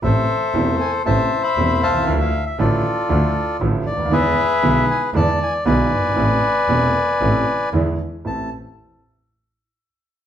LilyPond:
<<
  \new Staff \with { instrumentName = "Bandoneon" } { \time 4/4 \key a \minor \tempo 4 = 117 << { e''4. gis''8 a''8. b''8. a''8~ | a''16 f''8 e''16 d''2 r8 d''8 | e''4. gis''8 a''8 gis''8 gis''4~ | gis''2. r4 |
a''8 r2. r8 | } \\ { <a' c''>2 <c'' e''>8. e''8. <e'' f''>8~ | <e'' f''>4 <f' a'>2 r4 | <gis' b'>2 d''4 <b' d''>4~ | <b' d''>2. r4 |
r1 | } >> }
  \new Staff \with { instrumentName = "Grand piano" } { \clef bass \time 4/4 \key a \minor <a,, a, c e a e'>8 r8 <e,, e, c e a e'>8 r8 <a,, a, c e a e'>8 r8 <e,, e, c e a e'>8 r32 b,,32 c,32 cis,32 | <d, d f a e'>8 r8 <a,, a, d f a e'>8 r8 <d, d f a e'>8 r8 <a,, a, d f a e'>8 r32 cis,32 d,32 dis,32 | <e, d e gis b e'>8 r8 <b,, b, d gis b e'>8 r8 <e, d e gis b e'>8 r8 <b,, b, d gis b e'>8 r32 fis,,32 g,,32 gis,,32 | <a,, a, c e a e'>8 r8 <e,, e, c e a e'>8 r8 <a,, a, c e a e'>8 r8 <e, d e gis b e'>8 r8 |
<a,, a c' e'>8 r2. r8 | }
  \new Staff \with { instrumentName = "Double bass" } { \clef bass \time 4/4 \key a \minor a,,8 r8 e,,8 r8 a,,8 r8 e,,8 c,8 | d,8 r8 a,,8 r8 d,8 r8 a,,8 d,8 | e,8 r8 b,,8 r8 e,8 r8 b,,8 g,,8 | a,,8 r8 e,,8 r8 a,,8 r8 e,8 r8 |
a,,8 r2. r8 | }
>>